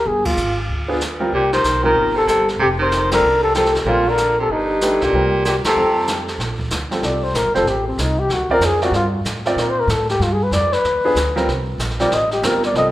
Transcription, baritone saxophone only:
1.34 1.51 A#2 medium
1.52 1.82 D#3 medium
1.84 2.14 D#3 medium
2.15 2.26 C3 medium
2.27 2.47 C3 medium
2.59 2.68 C3 medium
2.79 3.08 D#3 medium
3.12 3.41 D3 medium
3.42 3.53 C3 medium
3.54 3.74 C3 medium
3.86 4.09 A#2 medium
4.08 4.38 D3 medium
4.39 4.52 C3 medium
4.50 5.03 G2 medium
5.01 5.44 A#2 medium
5.45 5.54 A#2 medium
5.66 6.25 C3 medium

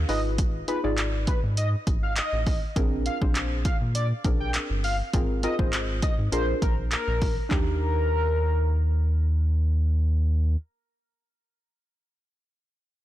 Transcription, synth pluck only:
0.09 0.57 D#4 medium
0.09 0.57 F4 medium
0.09 0.57 G#4 medium
0.09 0.57 B4 medium
0.68 0.78 D#4 medium
0.68 0.78 F4 medium
0.68 0.78 G#4 medium
0.68 0.78 B4 medium
0.84 1.55 D#4 medium
0.84 1.55 F4 medium
0.84 1.55 G#4 medium
0.84 1.55 D5 medium
2.76 3.03 C4 loud
2.76 3.03 D4 medium
2.76 3.03 G#4 medium
2.76 3.03 A#4 loud
3.21 3.84 C4 medium
3.21 3.84 D4 medium
3.21 3.85 G#4 medium
3.21 3.85 C5 medium
4.24 4.79 C4 medium
4.24 4.79 D4 medium
4.24 4.79 G#4 medium
4.24 4.79 A#4 medium
5.13 5.32 C4 loud
5.13 5.32 F4 medium
5.13 5.32 G#4 medium
5.13 5.33 A#4 loud
5.43 5.53 C4 medium
5.43 5.53 F4 medium
5.43 5.53 G#4 medium
5.43 5.53 A#4 medium
5.59 6.30 C4 medium
5.59 6.30 F4 medium
5.59 6.31 G#4 medium
5.59 6.31 C5 medium
6.32 7.28 D4 medium
6.32 7.28 F4 medium
6.32 7.28 G#4 medium
6.32 7.28 A#4 medium
7.49 10.54 D4 medium
7.49 10.56 D#4 medium
7.49 10.58 G4 loud

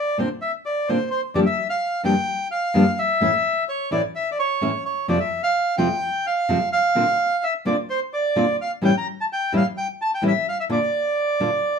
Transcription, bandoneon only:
0.00 0.18 D5 medium
0.19 0.29 C5 medium
0.42 0.52 E5 medium
0.66 0.89 D5 medium
0.88 1.09 C5 medium
1.11 1.21 C5 medium
1.35 1.40 D5 medium
1.46 1.68 E5 medium
1.69 2.02 F5 medium
2.05 2.48 G5 medium
2.51 2.99 F5 medium
2.99 3.64 E5 medium
3.69 3.90 C#5 medium
3.92 4.02 D5 medium
4.16 4.30 E5 medium
4.32 4.38 D5 soft
4.39 4.84 C#5 medium
4.85 5.07 C#5 medium
5.09 5.19 D5 medium
5.20 5.42 E5 medium
5.43 5.76 F5 medium
5.77 6.26 G5 medium
6.27 6.69 F5 medium
6.72 7.44 F5 medium
7.44 7.54 E5 medium
7.66 7.77 D5 medium
7.90 8.00 C5 medium
8.14 8.56 D5 medium
8.62 8.71 F5 medium
8.85 8.95 G5 medium
8.98 9.07 A#5 medium
9.21 9.25 A5 medium
9.33 9.53 G5 medium
9.57 9.66 F5 medium
9.77 9.87 G5 medium
10.02 10.11 A5 medium
10.15 10.23 G5 medium
10.28 10.47 E5 medium
10.49 10.58 F5 medium
10.60 10.65 E5 medium
10.72 11.79 D5 medium

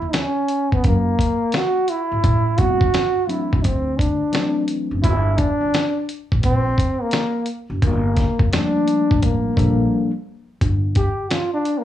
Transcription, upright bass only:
0.02 0.11 D#2 medium
0.72 0.82 E2 medium
0.85 1.12 F#2 loud
2.11 2.21 G#1 medium
2.24 2.68 A1 loud
2.81 2.91 G1 medium
3.53 3.62 B1 medium
3.65 4.18 D2 loud
4.91 5.00 F#1 medium
5.04 5.48 G1 loud
5.61 5.70 F1 medium
6.32 6.41 A1 loud
6.44 6.70 A#1 medium
7.70 7.79 F#1 medium
7.83 8.27 G1 loud
8.40 8.49 F1 medium
9.11 9.47 A1 medium
9.57 9.84 A#1 medium
10.61 11.05 G1 loud

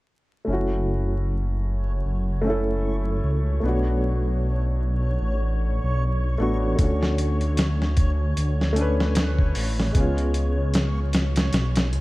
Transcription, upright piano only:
0.45 2.40 A3 medium
0.45 2.41 C#4 medium
0.50 2.42 E4 medium
0.50 2.44 F#4 medium
2.42 3.58 A3 medium
2.42 3.59 C#4 medium
2.47 3.61 E4 medium
2.47 3.62 A4 medium
3.60 6.34 A3 medium
3.60 6.36 B3 medium
3.66 6.37 D4 medium
3.66 6.39 F#4 medium
6.38 6.74 A3 medium
6.38 6.75 B3 medium
6.38 6.76 D4 medium
6.42 6.77 F#4 medium
6.76 8.71 A3 medium
6.76 8.72 C#4 medium
6.81 8.74 D4 medium
6.81 8.75 F#4 medium
8.73 9.89 A3 medium
8.73 9.91 C#4 medium
8.78 9.92 D4 medium
8.78 9.93 B4 medium
9.92 12.01 G#3 medium
9.92 12.01 B3 medium
9.97 12.01 C#4 medium
9.97 12.01 F4 medium

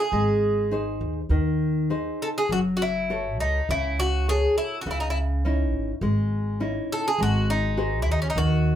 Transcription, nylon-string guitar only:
0.13 0.70 G#3 medium
0.71 1.19 D#4 soft
0.71 1.19 G#4 soft
0.71 1.20 C5 soft
1.30 1.89 D#3 medium
1.90 2.38 D#4 soft
1.90 2.38 G#4 soft
1.90 2.39 C5 soft
2.51 3.08 F#3 medium
3.10 3.58 F#4 soft
3.10 3.58 A4 soft
3.10 3.58 C#5 soft
3.70 4.27 C#3 medium
4.28 4.74 F#4 soft
4.28 4.75 A4 soft
4.28 4.75 C#5 soft
4.86 5.43 C#3 medium
5.45 5.91 C#4 soft
5.45 5.91 D#4 soft
5.45 5.91 E4 medium
6.02 6.59 G#3 medium
6.60 7.07 C#4 soft
6.60 7.07 D#4 soft
6.60 7.07 E4 soft
7.20 7.76 G#3 medium
7.77 8.24 F#4 medium
7.77 8.24 G#4 soft
7.77 8.25 C5 medium
8.36 8.75 D#3 medium

